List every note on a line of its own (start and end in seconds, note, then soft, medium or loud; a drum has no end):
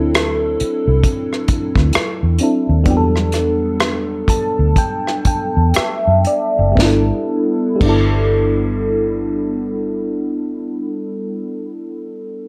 0.00 0.55 D2 medium
0.00 2.35 F#3 medium
0.00 2.36 C4 medium
0.00 2.37 D4 medium
0.00 2.38 E4 medium
0.00 2.38 A4 medium
0.15 cross-stick loud
0.15 closed hi-hat medium
0.60 muted fingered electric bass stroke soft
0.60 closed hi-hat medium
0.88 1.02 C2 medium
1.03 kick medium
1.03 closed hi-hat medium
1.33 cross-stick soft
1.48 muted fingered electric bass stroke soft
1.48 kick medium
1.48 closed hi-hat medium
1.76 1.92 D2 medium
1.76 kick medium
1.76 cross-stick soft
1.93 cross-stick medium
1.93 closed hi-hat medium
2.23 2.38 E2 medium
2.38 2.86 F#3 soft
2.38 2.86 C4 soft
2.38 2.86 D4 soft
2.38 2.87 E4 soft
2.38 closed hi-hat medium
2.43 2.88 A4 medium
2.69 2.87 D#2 medium
2.84 4.24 E2 medium
2.84 6.71 G3 medium
2.84 6.73 B3 medium
2.84 6.73 D4 medium
2.84 kick medium
2.84 closed hi-hat medium
2.89 6.74 F#3 medium
2.89 2.96 G4 medium
2.97 6.78 A4 medium
3.16 cross-stick soft
3.32 cross-stick soft
3.32 closed hi-hat medium
3.80 cross-stick loud
3.80 closed hi-hat soft
4.28 4.74 A5 medium
4.28 muted fingered electric bass stroke soft
4.28 kick medium
4.28 closed hi-hat medium
4.59 4.75 D2 medium
4.76 5.23 G5 medium
4.76 kick medium
4.76 closed hi-hat medium
5.07 cross-stick soft
5.25 5.72 G5 medium
5.25 muted fingered electric bass stroke soft
5.25 kick medium
5.25 closed hi-hat medium
5.57 5.73 E2 medium
5.74 6.23 E5 medium
5.74 muted fingered electric bass stroke soft
5.74 cross-stick medium
5.74 closed hi-hat medium
6.07 6.24 F#2 medium
6.25 6.74 D5 medium
6.25 closed hi-hat soft
6.59 6.75 F#1 medium
6.72 7.07 G3 medium
6.72 7.09 B3 medium
6.77 7.10 G1 medium
6.77 7.10 D4 medium
6.77 kick medium
6.77 snare medium
6.82 7.12 E4 medium
6.82 7.14 A4 medium
7.76 11.81 G3 medium
7.76 11.84 B3 medium
7.81 11.88 G1 medium
7.81 11.88 D4 medium
7.81 kick medium
7.81 crash medium
7.86 11.91 E4 medium
7.86 11.94 A4 medium